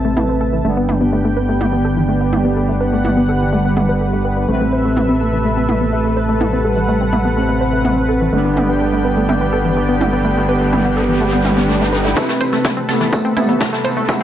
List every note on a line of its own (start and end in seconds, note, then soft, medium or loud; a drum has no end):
0.00 0.62 A1 medium
0.00 0.62 C3 medium
0.00 0.62 A3 medium
0.00 0.66 C4 loud
0.00 0.61 A4 medium
0.00 0.62 B4 medium
0.00 0.61 E5 medium
0.00 0.63 A5 medium
0.05 0.11 A3 medium
0.17 0.23 E4 medium
0.17 mid tom medium
0.29 0.35 C4 medium
0.41 0.47 A4 medium
0.53 0.59 E3 medium
0.65 4.46 G1 medium
0.65 4.46 D3 medium
0.65 4.46 G3 medium
0.65 0.71 A3 medium
0.65 4.46 B3 medium
0.65 1.38 D4 loud
0.65 4.45 D4 medium
0.65 4.45 G4 medium
0.65 12.13 B4 medium
0.65 2.55 G5 medium
0.77 0.85 B3 medium
0.89 0.92 E4 medium
0.89 mid tom medium
1.01 1.09 B3 medium
1.13 1.18 A3 medium
1.25 1.28 A3 medium
1.37 2.71 B3 loud
1.37 1.43 B4 medium
1.49 1.55 A3 medium
1.61 1.67 E4 medium
1.61 mid tom medium
1.73 1.79 B3 medium
1.85 1.91 A4 medium
1.97 2.02 E3 medium
2.09 2.14 A3 medium
2.21 2.29 B3 medium
2.33 2.36 E4 medium
2.33 mid tom medium
2.45 2.53 B3 medium
2.57 2.63 A3 medium
2.57 4.47 F#5 medium
2.69 2.72 A3 medium
2.81 3.43 B3 loud
2.81 2.86 B4 medium
2.93 2.99 A3 medium
3.05 3.11 E4 medium
3.05 mid tom medium
3.17 3.23 B3 medium
3.29 3.35 A4 medium
3.41 3.47 E3 medium
3.53 4.39 G3 loud
3.53 3.59 A3 medium
3.65 3.73 B3 medium
3.77 3.82 A3 medium
3.77 mid tom medium
3.89 3.92 B4 medium
4.01 4.04 A3 medium
4.13 4.16 A3 medium
4.25 4.31 B3 medium
4.37 4.45 B3 medium
4.49 8.30 A1 medium
4.49 8.30 C3 medium
4.49 4.54 A3 medium
4.49 8.30 A3 medium
4.49 5.22 C4 loud
4.49 8.29 A4 medium
4.49 8.30 B4 medium
4.49 6.39 E5 medium
4.61 4.64 A3 medium
4.73 4.79 C5 medium
4.85 4.91 A3 medium
4.97 5.03 E4 medium
4.97 mid tom medium
5.09 5.15 C4 medium
5.21 6.66 A3 loud
5.21 5.27 A4 medium
5.33 5.39 E3 medium
5.45 5.51 A3 medium
5.57 5.65 C4 medium
5.69 5.72 E4 medium
5.69 mid tom medium
5.81 5.89 B3 medium
5.93 5.99 A3 medium
6.05 6.08 A3 medium
6.17 6.23 C5 medium
6.29 6.35 A3 medium
6.41 6.46 E4 medium
6.41 8.31 F#5 medium
6.41 mid tom medium
6.53 6.58 C4 medium
6.65 7.27 G3 loud
6.65 6.70 A4 medium
6.77 6.82 E3 medium
6.89 6.94 A3 medium
7.01 7.09 C4 medium
7.13 7.16 E4 medium
7.13 mid tom medium
7.25 7.33 B3 medium
7.37 7.43 A3 medium
7.37 8.34 C4 loud
7.49 7.52 A3 medium
7.61 7.67 C5 medium
7.73 7.79 A3 medium
7.85 7.91 E4 medium
7.85 mid tom medium
7.97 8.03 C4 medium
8.09 8.15 A4 medium
8.21 8.27 E3 medium
8.33 12.14 G1 medium
8.33 12.14 D3 medium
8.33 12.14 G3 medium
8.33 8.39 A3 medium
8.33 12.14 B3 medium
8.33 12.13 D4 medium
8.33 8.95 D4 loud
8.33 12.13 G4 medium
8.33 12.13 G5 medium
8.33 riser medium
8.45 8.53 B3 medium
8.57 8.60 E4 medium
8.57 mid tom medium
8.69 8.77 B3 medium
8.81 8.87 A3 medium
8.93 8.96 A3 medium
9.05 10.39 B3 loud
9.05 9.11 B4 medium
9.17 9.23 A3 medium
9.29 9.35 E4 medium
9.29 mid tom medium
9.41 9.47 B3 medium
9.53 9.59 A4 medium
9.65 9.71 E3 medium
9.77 9.83 A3 medium
9.89 9.97 B3 medium
10.01 10.04 E4 medium
10.01 mid tom medium
10.13 10.21 B3 medium
10.25 10.31 A3 medium
10.37 10.40 A3 medium
10.49 11.22 B3 loud
10.49 10.55 B4 medium
10.61 10.67 A3 medium
10.73 10.79 E4 medium
10.73 mid tom medium
10.85 10.91 B3 medium
10.97 11.03 A4 medium
11.09 11.15 E3 medium
11.21 12.07 G3 loud
11.21 11.27 A3 medium
11.33 11.41 B3 medium
11.45 11.48 E4 medium
11.45 mid tom medium
11.57 11.65 B3 medium
11.69 11.75 A3 medium
11.81 11.84 A3 medium
11.93 11.98 B4 medium
12.05 12.10 A3 medium
12.16 12.86 C3 medium
12.16 12.22 A3 medium
12.16 12.86 A3 medium
12.16 14.23 A3 medium
12.16 12.79 C4 loud
12.16 14.23 A4 medium
12.16 12.86 B4 medium
12.16 14.23 B4 medium
12.16 kick loud
12.16 tambourine medium
12.16 riser medium
12.29 12.32 A3 medium
12.29 snare soft
12.41 12.48 A1 medium
12.41 12.46 C5 medium
12.41 closed hi-hat loud
12.41 tambourine medium
12.53 12.60 A1 medium
12.53 12.58 A3 medium
12.53 snare soft
12.65 12.70 E4 medium
12.65 kick loud
12.65 snare loud
12.65 mid tom medium
12.65 tambourine medium
12.77 12.82 C4 medium
12.89 12.96 A1 medium
12.89 13.34 C3 medium
12.89 13.34 A3 medium
12.89 14.23 A3 loud
12.89 13.34 B3 loud
12.89 12.95 A4 medium
12.89 snare soft
12.89 closed hi-hat loud
12.89 tambourine medium
13.01 13.08 A2 medium
13.01 13.06 E3 medium
13.01 snare soft
13.13 13.18 A3 medium
13.13 kick loud
13.13 tambourine medium
13.25 13.33 C4 medium
13.37 13.44 A1 loud
13.37 14.06 C3 medium
13.37 14.06 A3 medium
13.37 14.06 B3 loud
13.37 13.40 E4 medium
13.37 closed hi-hat loud
13.37 mid tom medium
13.37 tambourine medium
13.49 13.56 A1 medium
13.49 13.57 B3 medium
13.49 closed hi-hat soft
13.60 13.66 A3 medium
13.60 kick loud
13.60 snare loud
13.60 tambourine medium
13.73 13.76 A3 medium
13.73 snare soft
13.85 13.92 A1 medium
13.85 13.90 C5 medium
13.85 closed hi-hat loud
13.85 tambourine medium
13.97 14.04 A1 medium
13.97 14.02 A3 medium
14.09 14.23 C3 medium
14.09 14.23 A3 medium
14.09 14.23 B3 medium
14.09 14.14 E4 medium
14.09 kick loud
14.09 mid tom medium
14.09 tambourine medium